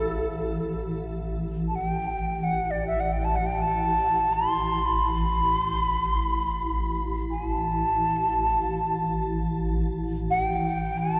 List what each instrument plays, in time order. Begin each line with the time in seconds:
Already playing: synth drone A1, tubular bells C4 E4, xiao A4
0.92 synth drone A1
1.67 xiao A5
1.75 xiao G5
2.43 xiao F#5
2.70 xiao D5
2.87 xiao E5
3.00 xiao F#5
3.12 xiao G5
3.24 xiao A5
3.35 xiao F#5
3.45 xiao G5
3.62 xiao A5
4.33 xiao C6
4.85 xiao B5
5.64 xiao C6
5.80 xiao B5
6.07 xiao C6
6.24 xiao B5
7.30 xiao G#5
7.48 xiao A5
10.30 xiao F#5
10.42 xiao G5
10.97 xiao A5